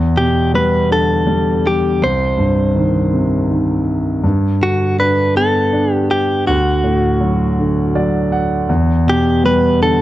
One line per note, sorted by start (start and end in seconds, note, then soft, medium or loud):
0.00 1.97 E2 medium
0.16 1.60 B2 soft
0.16 0.51 G4 medium
0.54 1.25 G3 soft
0.54 0.92 B4 medium
0.90 1.98 D3 soft
0.90 1.68 A4 medium
1.27 1.99 G3 soft
1.67 2.04 G4 medium
2.02 4.20 C2 medium
2.02 3.84 C5 medium
2.38 3.82 G2 soft
2.75 3.49 D#3 soft
3.13 4.21 C3 soft
3.50 4.22 D#3 soft
4.24 6.42 G2 medium
4.61 6.05 D3 soft
4.61 4.96 F#4 medium
4.99 5.71 D4 soft
4.99 5.37 B4 medium
5.35 6.43 B3 soft
5.35 5.93 A4 medium
5.73 6.44 D4 soft
5.93 6.11 G4 medium
6.11 6.47 G4 medium
6.47 8.65 D2 medium
6.47 8.28 F#4 medium
6.84 8.28 A2 soft
7.20 7.94 F#3 soft
7.59 8.66 D3 soft
7.95 8.67 F#3 soft
7.95 8.30 D5 medium
8.32 8.67 F#5 medium
8.69 10.02 E2 medium
9.07 10.02 B2 soft
9.07 9.45 G4 medium
9.44 10.02 G3 soft
9.44 9.82 B4 medium
9.81 10.02 D3 soft
9.81 10.02 A4 medium